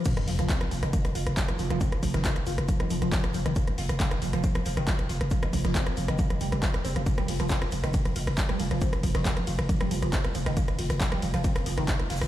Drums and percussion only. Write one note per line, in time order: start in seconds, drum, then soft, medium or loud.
0.04 kick loud
0.04 closed hi-hat loud
0.04 crash loud
0.04 shaker medium
0.17 cross-stick medium
0.17 closed hi-hat medium
0.28 open hi-hat loud
0.28 open hi-hat medium
0.39 cross-stick medium
0.39 closed hi-hat medium
0.39 closed hi-hat soft
0.49 kick loud
0.49 snare loud
0.49 clap loud
0.49 closed hi-hat loud
0.49 shaker medium
0.61 cross-stick medium
0.61 snare soft
0.61 closed hi-hat medium
0.71 open hi-hat medium
0.71 shaker medium
0.83 cross-stick medium
0.83 closed hi-hat medium
0.83 closed hi-hat soft
0.93 kick loud
0.93 closed hi-hat loud
0.93 shaker medium
1.05 cross-stick medium
1.05 closed hi-hat medium
1.05 closed hi-hat soft
1.15 open hi-hat loud
1.15 shaker medium
1.27 cross-stick medium
1.27 closed hi-hat medium
1.37 kick loud
1.37 snare loud
1.37 clap loud
1.37 closed hi-hat loud
1.37 shaker medium
1.48 cross-stick medium
1.48 closed hi-hat medium
1.59 snare soft
1.59 open hi-hat medium
1.59 shaker medium
1.70 cross-stick medium
1.70 closed hi-hat medium
1.81 kick loud
1.81 closed hi-hat loud
1.81 shaker medium
1.92 cross-stick medium
1.92 closed hi-hat medium
2.03 kick medium
2.03 open hi-hat loud
2.03 shaker medium
2.14 cross-stick medium
2.14 snare medium
2.14 closed hi-hat medium
2.24 kick loud
2.24 snare loud
2.24 clap loud
2.24 closed hi-hat loud
2.24 shaker loud
2.36 cross-stick medium
2.36 closed hi-hat medium
2.46 open hi-hat medium
2.46 shaker medium
2.58 cross-stick medium
2.58 closed hi-hat medium
2.68 kick loud
2.68 closed hi-hat loud
2.68 shaker medium
2.80 cross-stick medium
2.80 closed hi-hat medium
2.90 open hi-hat loud
2.90 shaker medium
3.02 cross-stick medium
3.02 closed hi-hat medium
3.12 kick loud
3.12 snare loud
3.12 clap loud
3.12 closed hi-hat loud
3.12 shaker medium
3.23 cross-stick medium
3.23 snare soft
3.23 closed hi-hat medium
3.34 open hi-hat medium
3.34 shaker medium
3.46 cross-stick medium
3.46 closed hi-hat medium
3.56 kick loud
3.56 closed hi-hat medium
3.56 shaker medium
3.68 cross-stick medium
3.68 closed hi-hat medium
3.78 open hi-hat loud
3.78 open hi-hat medium
3.89 cross-stick medium
3.89 closed hi-hat medium
3.89 closed hi-hat soft
4.00 kick loud
4.00 snare loud
4.00 clap loud
4.00 closed hi-hat loud
4.00 shaker medium
4.11 cross-stick medium
4.11 snare soft
4.11 closed hi-hat medium
4.22 open hi-hat loud
4.22 shaker medium
4.33 cross-stick medium
4.33 closed hi-hat soft
4.33 closed hi-hat medium
4.44 kick loud
4.44 closed hi-hat loud
4.44 shaker loud
4.55 cross-stick loud
4.55 closed hi-hat soft
4.55 closed hi-hat medium
4.65 open hi-hat loud
4.65 shaker medium
4.77 cross-stick medium
4.77 closed hi-hat medium
4.87 kick loud
4.87 snare loud
4.87 clap loud
4.87 closed hi-hat medium
4.87 shaker medium
4.99 cross-stick medium
4.99 closed hi-hat medium
5.09 snare soft
5.09 open hi-hat loud
5.09 shaker medium
5.21 cross-stick medium
5.21 closed hi-hat medium
5.30 kick loud
5.30 closed hi-hat medium
5.30 shaker medium
5.43 cross-stick loud
5.43 closed hi-hat soft
5.53 kick medium
5.53 open hi-hat loud
5.53 shaker medium
5.65 cross-stick medium
5.65 snare medium
5.65 closed hi-hat medium
5.75 kick loud
5.75 snare loud
5.75 clap loud
5.75 closed hi-hat medium
5.75 shaker medium
5.87 cross-stick medium
5.87 closed hi-hat medium
5.97 open hi-hat medium
5.97 shaker medium
6.08 cross-stick loud
6.08 closed hi-hat medium
6.18 kick loud
6.18 closed hi-hat loud
6.18 shaker medium
6.30 cross-stick medium
6.30 closed hi-hat medium
6.41 open hi-hat loud
6.41 shaker medium
6.52 cross-stick medium
6.52 closed hi-hat soft
6.62 kick loud
6.62 snare loud
6.62 clap loud
6.62 closed hi-hat medium
6.62 shaker medium
6.74 cross-stick medium
6.74 snare soft
6.74 closed hi-hat medium
6.85 open hi-hat medium
6.85 shaker medium
6.96 cross-stick medium
6.96 closed hi-hat medium
7.06 kick loud
7.06 closed hi-hat medium
7.06 ride medium
7.06 shaker medium
7.18 cross-stick medium
7.18 closed hi-hat soft
7.28 open hi-hat loud
7.28 open hi-hat medium
7.28 ride medium
7.39 cross-stick medium
7.39 closed hi-hat soft
7.39 closed hi-hat medium
7.49 kick loud
7.49 snare loud
7.49 clap loud
7.49 closed hi-hat medium
7.49 ride medium
7.49 shaker loud
7.62 cross-stick loud
7.62 snare soft
7.62 closed hi-hat medium
7.71 open hi-hat medium
7.71 ride medium
7.71 shaker medium
7.84 cross-stick medium
7.84 closed hi-hat soft
7.93 kick loud
7.93 closed hi-hat loud
7.93 ride medium
7.93 shaker medium
8.05 cross-stick medium
8.05 closed hi-hat soft
8.05 closed hi-hat medium
8.16 open hi-hat loud
8.16 ride medium
8.16 shaker medium
8.27 cross-stick loud
8.27 closed hi-hat soft
8.37 kick loud
8.37 snare loud
8.37 clap loud
8.37 closed hi-hat medium
8.37 ride medium
8.37 shaker medium
8.49 cross-stick medium
8.49 closed hi-hat soft
8.59 snare soft
8.59 open hi-hat medium
8.59 ride medium
8.59 shaker medium
8.71 cross-stick medium
8.71 closed hi-hat medium
8.81 kick loud
8.81 closed hi-hat medium
8.81 ride medium
8.81 shaker medium
8.93 cross-stick medium
8.93 closed hi-hat soft
9.03 kick medium
9.03 open hi-hat loud
9.03 ride medium
9.03 shaker medium
9.15 cross-stick loud
9.15 snare medium
9.15 closed hi-hat medium
9.25 kick loud
9.25 snare loud
9.25 clap loud
9.25 closed hi-hat medium
9.25 ride medium
9.25 shaker medium
9.37 cross-stick medium
9.37 closed hi-hat medium
9.47 open hi-hat medium
9.47 ride medium
9.47 shaker medium
9.59 cross-stick loud
9.59 closed hi-hat medium
9.69 kick loud
9.69 closed hi-hat medium
9.69 ride medium
9.69 shaker medium
9.81 cross-stick loud
9.81 closed hi-hat medium
9.91 open hi-hat loud
9.91 ride medium
9.91 shaker medium
10.02 cross-stick medium
10.02 closed hi-hat medium
10.12 kick loud
10.12 snare loud
10.12 clap loud
10.12 closed hi-hat medium
10.12 ride medium
10.12 shaker medium
10.24 cross-stick medium
10.24 snare soft
10.24 closed hi-hat soft
10.35 open hi-hat medium
10.35 ride medium
10.35 shaker medium
10.46 cross-stick loud
10.46 closed hi-hat medium
10.57 kick loud
10.57 closed hi-hat medium
10.57 ride medium
10.57 shaker medium
10.68 cross-stick medium
10.68 closed hi-hat soft
10.79 open hi-hat loud
10.79 open hi-hat medium
10.79 ride medium
10.90 cross-stick medium
10.90 closed hi-hat medium
11.00 kick loud
11.00 snare loud
11.00 clap loud
11.00 closed hi-hat medium
11.00 ride medium
11.00 shaker medium
11.12 cross-stick loud
11.12 snare soft
11.12 closed hi-hat medium
11.22 open hi-hat medium
11.22 ride medium
11.22 shaker medium
11.34 cross-stick medium
11.34 closed hi-hat medium
11.34 closed hi-hat soft
11.44 kick loud
11.44 closed hi-hat medium
11.44 ride medium
11.44 shaker medium
11.56 cross-stick loud
11.56 closed hi-hat medium
11.56 closed hi-hat soft
11.66 open hi-hat loud
11.66 ride medium
11.66 shaker medium
11.78 cross-stick medium
11.78 closed hi-hat medium
11.88 kick loud
11.88 snare loud
11.88 clap loud
11.88 closed hi-hat medium
11.88 ride medium
11.88 shaker medium
12.00 cross-stick medium
12.00 closed hi-hat soft
12.10 snare loud
12.10 open hi-hat medium
12.10 ride medium
12.10 shaker medium
12.16 snare loud
12.16 shaker medium
12.21 cross-stick loud
12.21 snare medium
12.21 closed hi-hat medium
12.21 shaker medium